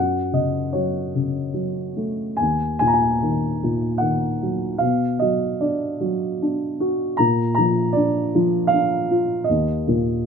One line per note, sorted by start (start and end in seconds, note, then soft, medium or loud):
0.00 2.34 F#2 soft
0.00 0.31 F#5 medium
0.32 1.13 C#3 soft
0.32 0.76 D#5 soft
0.73 1.52 F#3 soft
0.73 1.92 C#5 soft
1.15 2.35 C#3 soft
1.54 2.36 F#3 soft
1.97 2.38 A3 soft
2.37 4.77 D#2 soft
2.37 2.78 G#5 medium
2.79 3.62 A#2 soft
2.79 2.88 G#5 medium
2.87 2.95 A#5 soft
2.94 4.03 G#5 medium
3.22 4.00 D#3 soft
3.63 4.77 A#2 soft
3.98 4.78 D#3 soft
3.98 4.81 F#5 medium
4.42 4.80 F#3 soft
4.78 7.13 B2 soft
4.78 5.16 F5 medium
5.19 5.99 F#3 soft
5.19 5.56 D#5 medium
5.61 6.41 D4 soft
5.61 6.75 D5 medium
6.00 7.15 F#3 soft
6.42 7.17 D4 soft
6.80 7.17 F#4 soft
7.17 9.44 A#2 soft
7.17 7.53 A#5 medium
7.55 8.33 F3 soft
7.55 7.90 A#5 medium
7.93 8.72 D4 soft
7.93 8.65 D5 medium
8.35 9.45 F3 soft
8.67 9.41 F5 medium
8.73 9.46 D4 soft
9.11 9.47 F4 soft
9.44 10.26 D#5 medium
9.49 10.26 D#2 soft
9.88 10.26 A#2 soft